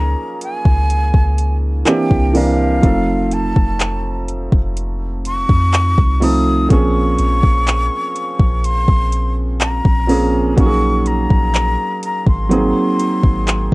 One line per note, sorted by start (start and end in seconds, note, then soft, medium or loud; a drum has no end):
0.00 0.15 C#2 loud
0.00 0.67 F3 medium
0.00 0.67 A#3 medium
0.00 0.68 C#4 medium
0.00 0.68 D#4 medium
0.00 0.69 G#4 medium
0.00 0.42 A#5 loud
0.41 1.57 G#5 loud
0.41 closed hi-hat medium
0.65 1.12 C#2 loud
0.65 kick loud
0.90 closed hi-hat medium
1.14 1.84 C#2 loud
1.14 kick medium
1.38 closed hi-hat medium
1.85 2.29 E3 medium
1.85 2.29 A#3 medium
1.85 2.30 C4 medium
1.85 2.30 D4 medium
1.85 2.31 G4 medium
1.85 2.38 G5 medium
1.85 clap loud
1.85 closed hi-hat medium
2.11 2.81 C2 loud
2.11 kick medium
2.33 2.77 E3 medium
2.33 2.77 A#3 medium
2.33 2.78 C4 medium
2.33 2.78 D4 medium
2.33 2.79 A#4 medium
2.33 3.35 F5 loud
2.33 open hi-hat medium
2.82 3.53 F1 loud
2.82 4.54 F3 medium
2.82 4.55 A3 medium
2.82 4.55 C4 medium
2.82 4.55 D#4 medium
2.82 4.56 A4 medium
2.82 kick loud
2.82 closed hi-hat medium
3.31 4.29 A5 medium
3.31 closed hi-hat medium
3.56 4.49 F1 loud
3.56 kick medium
3.80 clap loud
3.80 closed hi-hat medium
4.28 closed hi-hat medium
4.52 5.45 F1 loud
4.52 kick loud
4.77 closed hi-hat medium
5.25 6.25 C#6 loud
5.25 closed hi-hat medium
5.49 5.96 F2 loud
5.49 kick loud
5.74 clap loud
5.74 closed hi-hat medium
5.98 6.68 C2 loud
5.98 kick medium
6.20 6.64 F3 medium
6.20 6.64 A3 medium
6.20 6.65 C4 medium
6.20 6.65 D#4 medium
6.20 6.66 A4 medium
6.20 6.71 D#6 loud
6.20 open hi-hat medium
6.69 7.17 A#1 loud
6.69 8.41 F3 medium
6.69 8.42 A#3 medium
6.69 8.42 C4 medium
6.69 8.42 C#4 medium
6.69 8.43 G#4 medium
6.69 8.67 C#6 loud
6.69 kick loud
6.69 closed hi-hat medium
7.19 7.42 A#1 loud
7.19 closed hi-hat medium
7.43 7.90 A#1 loud
7.43 kick medium
7.67 clap loud
7.67 closed hi-hat medium
8.16 closed hi-hat medium
8.39 8.86 A#1 loud
8.39 kick loud
8.64 9.34 C6 loud
8.64 closed hi-hat medium
8.88 9.81 A#1 loud
8.88 kick medium
9.12 closed hi-hat medium
9.61 10.54 A#5 loud
9.61 clap loud
9.61 closed hi-hat medium
9.85 10.55 A#1 loud
9.85 kick loud
10.07 10.51 F3 medium
10.07 10.52 A#3 medium
10.07 10.52 C4 medium
10.07 10.52 C#4 medium
10.07 10.53 G#4 medium
10.07 open hi-hat medium
10.56 11.27 A#1 loud
10.56 12.28 F#3 medium
10.56 12.29 A#3 medium
10.56 12.29 C#4 medium
10.56 12.30 D#4 medium
10.56 10.65 F#4 medium
10.56 11.09 C#6 loud
10.56 kick loud
10.56 closed hi-hat medium
10.66 12.33 G#4 medium
11.06 12.03 A#5 loud
11.06 closed hi-hat medium
11.30 11.77 A#1 loud
11.30 kick medium
11.54 clap loud
11.54 closed hi-hat medium
12.03 12.26 A#5 medium
12.03 closed hi-hat medium
12.27 12.73 G#1 loud
12.27 13.74 C6 medium
12.27 kick loud
12.49 13.74 F#3 medium
12.49 13.74 A#3 medium
12.49 13.74 C4 medium
12.49 13.74 D#4 medium
12.49 13.74 G#4 medium
12.49 closed hi-hat medium
12.99 closed hi-hat medium
13.23 13.70 G#1 loud
13.23 kick loud
13.48 clap loud
13.48 closed hi-hat medium